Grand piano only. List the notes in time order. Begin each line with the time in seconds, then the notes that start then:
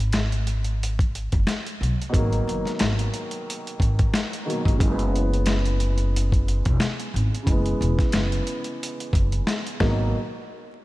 2.09 B2 D#3
2.15 F#3 A#3
4.45 B2 D#3 F#3
4.49 A#3
4.77 C#3 E3
4.83 G#3 A#3
4.92 B3
7.43 C#3 E3
7.49 G#3 B3
9.80 B2 D#3 F#3 A#3